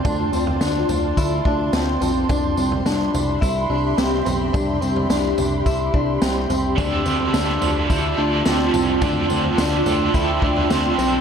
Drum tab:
TB |x-x-x-x-x---x-x-|x-x-x-x-x---x-x-|x-x-x-x-x---x-x-|x-x-x-x-x---x-x-|
SD |----o-------o---|----o-------o---|----o-------o---|----o-------o---|
FT |o--o--o-------o-|o--o--o-------o-|o--o--o-------o-|o--o--o-------o-|
BD |o-------o-o-----|o-------o-------|o-------o-o-----|o-------o-------|

TB |x-x-x-x-x---x-x-|
SD |----o-------o---|
FT |o--o--o----o----|
BD |o-------o-o-----|